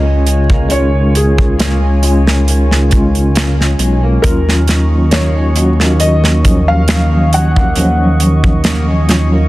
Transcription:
Already playing: detuned saw bass C#2, tine electric piano G#3 C#4 F4 G#4, ambient pad F4 C#5 G#5, felt piano D#5
0.06 clean electric guitar G#3
0.26 clean electric guitar G#3, closed hi-hat
0.50 clean electric guitar A#3, kick
0.68 detuned saw bass C#2, clean electric guitar D#3, tine electric piano G#3 C#4, felt piano C#5, closed hi-hat
0.73 tine electric piano F4
1.15 felt piano G#4, closed hi-hat
1.38 kick
1.59 clean electric guitar A#3, snare, closed hi-hat
1.82 clean electric guitar G#3
2.02 tine electric piano G#3 C#4 F4, clean electric guitar G#3, closed hi-hat
2.27 clean electric guitar A#3, snare
2.47 clean electric guitar D#3, closed hi-hat
2.71 snare
2.89 tine electric piano G#3 C#4, kick, closed hi-hat
2.93 tine electric piano F4
3.15 closed hi-hat
3.35 clean electric guitar A#3, snare, closed hi-hat
3.59 clean electric guitar G#3, snare
3.79 detuned saw bass B1, clean electric guitar G#3, closed hi-hat
4.03 clean electric guitar A#3
4.22 detuned saw bass D#2, ambient pad D#3 D#5 C#6, clean electric guitar D#3, tine electric piano F#3 C#4, felt piano A#4, kick, closed hi-hat
4.27 tine electric piano F4
4.49 snare
4.67 snare, closed hi-hat
5.11 clean electric guitar A#3, felt piano C#5, snare, closed hi-hat
5.36 clean electric guitar G#3
5.55 tine electric piano F#3 C#4 F#4, clean electric guitar G#3, closed hi-hat
5.80 clean electric guitar A#3, snare
6.00 clean electric guitar D#3, felt piano D#5, closed hi-hat
6.24 snare
6.43 tine electric piano F#3 C#4, kick, closed hi-hat
6.47 tine electric piano F3
6.68 felt piano F5
6.88 clean electric guitar A#3, snare, closed hi-hat
7.13 clean electric guitar G#3
7.33 clean electric guitar G#3, felt piano F#5, closed hi-hat
7.56 clean electric guitar A#3, kick
7.75 detuned saw bass D#2, clean electric guitar D#3, tine electric piano F#3 C#4, closed hi-hat
7.79 tine electric piano F3
8.20 closed hi-hat
8.44 kick
8.64 clean electric guitar A#3, snare, closed hi-hat
8.88 clean electric guitar G#3
9.08 tine electric piano F#3 C#4 F4, clean electric guitar G#3, snare, closed hi-hat
9.32 clean electric guitar A#3

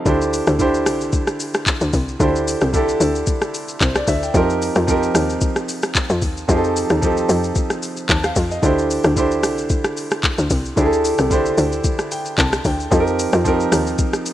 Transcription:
0.05 log drum bass D2, grand piano D3 D4 E4 G4 C5, kick, shaker
0.21 shaker
0.33 open hi-hat, shaker
0.47 log drum bass D2, cross-stick, shaker
0.58 grand piano D3 D4 E4 G4 C5, kick, shaker
0.74 shaker
0.86 log drum bass C2, cross-stick, open hi-hat, shaker
1.01 shaker
1.12 kick, shaker
1.27 cross-stick, shaker
1.40 open hi-hat, shaker
1.54 cross-stick, shaker
1.66 kick, clap, shaker
1.81 log drum bass D2, shaker
1.93 log drum bass C2, kick, open hi-hat, shaker
2.08 shaker
2.19 log drum bass D2, grand piano D3 D4 E4 G4 C5, kick, shaker
2.36 shaker
2.48 open hi-hat, shaker
2.61 log drum bass C2, cross-stick, shaker
2.73 grand piano D3 D4 E4 G4 A4, kick, shaker
2.89 shaker
3.00 log drum bass D2, open hi-hat, shaker
3.15 shaker
3.27 kick, shaker
3.42 cross-stick, shaker
3.54 open hi-hat, shaker
3.68 shaker
3.81 log drum bass C2, grand piano C5, kick, clap, shaker
3.95 grand piano D5, cross-stick, shaker
4.07 log drum bass D2, grand piano E5, kick, open hi-hat, shaker
4.23 grand piano G5, shaker
4.34 log drum bass F2, grand piano F3 C4 D#4 G4 A#4, kick, shaker
4.50 shaker
4.62 open hi-hat, shaker
4.75 log drum bass F2, cross-stick, shaker
4.87 grand piano F3 C4 D#4 G4 A#4, kick, shaker
5.03 shaker
5.15 log drum bass D#2, cross-stick, open hi-hat, shaker
5.30 shaker
5.41 kick, shaker
5.56 cross-stick, shaker
5.69 open hi-hat, shaker
5.82 cross-stick, shaker
5.95 kick, clap, shaker
6.10 log drum bass F2, shaker
6.22 log drum bass D#2, kick, open hi-hat, shaker
6.37 shaker
6.48 log drum bass F2, grand piano F3 C4 D#4 G4 G#4, kick, shaker
6.57 grand piano A4
6.64 shaker
6.76 open hi-hat, shaker
6.89 log drum bass D#2, cross-stick, shaker
7.01 grand piano F3 C4 D#4 G4 A4, kick, shaker
7.17 shaker
7.29 log drum bass F2, open hi-hat, shaker
7.44 shaker
7.55 kick, shaker
7.70 cross-stick, shaker
7.83 open hi-hat, shaker
7.97 shaker
8.09 log drum bass D#2, grand piano A5, kick, clap, shaker
8.24 grand piano F5, cross-stick, shaker
8.36 log drum bass F2, kick, open hi-hat, shaker
8.51 grand piano D#5, shaker
8.62 log drum bass D2, grand piano D3 D4 E4 G4 C5, kick, shaker
8.78 shaker
8.90 open hi-hat, shaker
9.04 log drum bass D2, cross-stick, shaker
9.16 grand piano D3 D4 E4 G4 C5, kick, shaker
9.31 shaker
9.43 log drum bass C2, cross-stick, open hi-hat, shaker
9.58 shaker
9.69 kick, shaker
9.84 cross-stick, shaker
9.97 open hi-hat, shaker
10.11 cross-stick, shaker
10.23 kick, clap, shaker
10.38 log drum bass D2, shaker
10.50 log drum bass C2, kick, open hi-hat, shaker
10.65 shaker
10.76 log drum bass D2, grand piano D3 D4 E4 G4 G#4, kick, shaker
10.85 grand piano A4
10.93 shaker
11.05 open hi-hat, shaker
11.18 log drum bass C2, cross-stick, shaker
11.30 grand piano D3 D4 E4 G4 C5, kick, shaker
11.46 shaker
11.58 log drum bass D2, open hi-hat, shaker
11.72 shaker
11.84 kick, shaker
11.99 cross-stick, shaker
12.11 grand piano G5, open hi-hat, shaker
12.25 shaker
12.38 log drum bass C2, grand piano A5, kick, clap, shaker
12.53 cross-stick, shaker
12.65 log drum bass D2, grand piano G5, kick, open hi-hat, shaker
12.80 shaker
12.91 log drum bass F2, grand piano F3 C4 D#4 G4 A4, kick, shaker
13.00 grand piano A#4
13.07 shaker
13.19 open hi-hat, shaker
13.32 log drum bass F2, cross-stick, shaker
13.44 grand piano F3 C4 D#4 G4 A#4, kick, shaker
13.60 shaker
13.72 log drum bass D#2, cross-stick, open hi-hat, shaker
13.87 shaker
13.98 kick, shaker
14.13 cross-stick, shaker
14.26 open hi-hat, shaker

